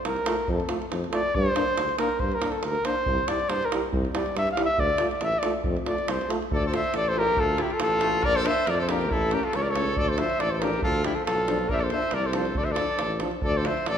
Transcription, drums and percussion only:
0.05 davul high medium
0.16 davul high soft
0.26 davul high medium
0.48 davul low medium
0.60 davul high soft
0.69 davul high medium
0.82 davul high soft
0.92 davul high medium
1.04 davul high soft
1.13 davul high medium
1.35 davul low medium
1.46 davul high soft
1.56 davul high medium
1.68 davul high soft
1.78 davul high medium
1.89 davul high soft
1.99 davul high medium
2.19 davul low medium
2.32 davul high soft
2.42 davul high medium
2.52 davul high soft
2.63 davul high medium
2.75 davul high soft
2.85 davul high medium
3.06 davul low medium
3.18 davul high soft
3.28 davul high medium
3.40 davul high soft
3.50 davul high medium
3.63 davul high soft
3.72 davul high medium
3.93 davul low medium
4.05 davul high soft
4.15 davul high medium
4.26 davul high soft
4.37 davul high medium
4.47 davul high soft
4.57 davul high medium
4.78 davul low medium
4.90 davul high soft
4.98 davul high medium
5.11 davul high soft
5.21 davul high medium
5.32 davul high soft
5.43 davul high medium
5.64 davul low medium
5.77 davul high soft
5.86 davul high medium
5.98 davul high soft
6.08 davul high medium
6.21 davul high soft
6.30 davul high medium
6.42 davul high soft
6.52 davul low loud
6.63 davul high soft
6.74 davul high medium
6.84 davul high soft
6.94 davul high medium
7.27 davul high soft
7.37 davul low medium
7.49 davul high soft
7.58 davul high medium
7.70 davul high soft
7.80 davul high medium
8.01 davul high medium
8.13 davul high soft
8.23 davul low medium
8.46 davul high medium
8.57 davul high soft
8.67 davul high medium
8.89 davul high medium
9.01 davul high soft
9.11 davul low medium
9.22 davul high soft
9.31 davul high medium
9.43 davul high soft
9.53 davul high medium
9.65 davul high soft
9.75 davul high medium
9.87 davul high soft
9.97 davul low medium
10.08 davul high soft
10.18 davul high medium
10.30 davul high soft
10.40 davul high medium
10.62 davul high medium
10.73 davul high soft
10.82 davul low medium
10.95 davul high soft
11.04 davul high medium
11.16 davul high soft
11.27 davul high medium
11.48 davul high medium
11.59 davul high soft
11.69 davul low medium
11.81 davul high soft
11.90 davul high soft
12.02 davul high soft
12.11 davul high medium
12.33 davul high medium
12.45 davul high soft
12.55 davul low medium
12.66 davul high soft
12.76 davul high medium
12.99 davul high medium
13.11 davul high soft
13.20 davul high medium
13.31 davul high soft
13.42 davul low medium
13.54 davul high soft
13.65 davul high medium
13.77 davul high soft
13.86 davul high medium

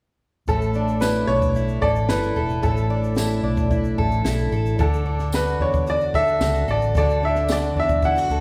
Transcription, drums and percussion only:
0.48 kick medium
0.48 shaker medium
0.62 shaker medium
0.74 shaker soft
0.88 shaker medium
1.01 snare loud
1.01 tambourine medium
1.01 shaker medium
1.15 shaker medium
1.42 kick medium
1.42 shaker medium
1.55 shaker medium
1.68 shaker soft
1.82 kick medium
1.96 shaker medium
2.09 snare loud
2.09 tambourine medium
2.09 shaker medium
2.23 shaker medium
2.49 shaker medium
2.63 kick medium
2.63 shaker medium
2.77 shaker medium
3.04 shaker soft
3.15 snare loud
3.15 tambourine medium
3.15 shaker medium
3.30 shaker soft
3.57 kick medium
3.57 shaker medium
3.71 kick medium
3.71 shaker medium
3.84 shaker soft
3.98 kick medium
4.12 shaker medium
4.25 snare loud
4.25 tambourine medium
4.25 shaker medium
4.39 shaker soft
4.52 shaker soft
4.66 shaker medium
4.79 kick medium
4.79 shaker medium
4.94 shaker medium
5.19 snare soft
5.19 shaker medium
5.32 snare loud
5.32 tambourine medium
5.32 shaker medium
5.48 shaker soft
5.74 kick medium
5.74 shaker medium
5.87 shaker medium
6.00 shaker soft
6.14 kick medium
6.28 shaker medium
6.41 snare loud
6.41 tambourine medium
6.41 shaker medium
6.55 shaker soft
6.68 shaker medium
6.82 shaker medium
6.95 kick medium
6.95 shaker medium
7.10 shaker medium
7.36 snare soft
7.36 shaker medium
7.48 snare loud
7.48 tambourine medium
7.48 shaker medium
7.62 shaker soft
7.89 kick medium
7.89 shaker medium
8.02 kick medium
8.02 shaker medium
8.16 shaker soft
8.29 shaker soft

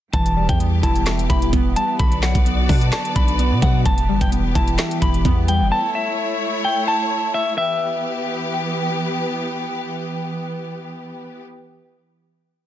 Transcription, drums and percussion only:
0.13 kick loud
0.13 closed hi-hat medium
0.26 closed hi-hat medium
0.49 kick loud
0.49 closed hi-hat medium
0.60 closed hi-hat medium
0.83 kick loud
0.83 closed hi-hat medium
0.96 closed hi-hat medium
1.06 snare loud
1.06 clap loud
1.06 closed hi-hat medium
1.19 closed hi-hat medium
1.30 kick loud
1.30 closed hi-hat medium
1.42 closed hi-hat medium
1.53 kick loud
1.53 closed hi-hat medium
1.76 closed hi-hat medium
2.00 kick loud
2.00 closed hi-hat medium
2.12 closed hi-hat medium
2.23 snare loud
2.23 clap medium
2.35 kick loud
2.35 closed hi-hat medium
2.46 closed hi-hat medium
2.69 kick loud
2.69 open hi-hat medium
2.81 closed hi-hat medium
2.92 snare loud
2.92 clap loud
2.92 closed hi-hat medium
3.05 closed hi-hat medium
3.16 kick loud
3.16 closed hi-hat medium
3.28 closed hi-hat medium
3.39 closed hi-hat medium
3.62 kick medium
3.62 closed hi-hat medium
3.86 kick loud
3.86 closed hi-hat medium
3.98 closed hi-hat medium
4.21 kick loud
4.21 closed hi-hat medium
4.32 closed hi-hat medium
4.55 kick loud
4.55 closed hi-hat medium
4.68 closed hi-hat medium
4.78 snare loud
4.78 clap loud
4.78 closed hi-hat medium
4.91 closed hi-hat medium
5.02 kick loud
5.02 closed hi-hat medium
5.14 closed hi-hat medium
5.25 kick loud
5.25 closed hi-hat medium
5.48 closed hi-hat medium

